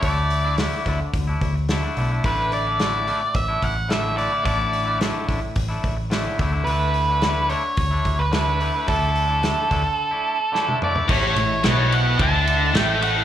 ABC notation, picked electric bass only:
X:1
M:4/4
L:1/16
Q:1/4=108
K:A
V:1 name="Picked electric bass" clef=bass
D,,6 D,, z D,,2 D,,4 B,,,2 | A,,,8 A,,,2 A,,,6 | A,,,6 A,,, z A,,,2 A,,,4 D,,2 | D,,8 D,,2 D,,6 |
D,,6 D,, z8 z | A,,,2 A,,,2 B,,,4 D,,4 A,,,4 |]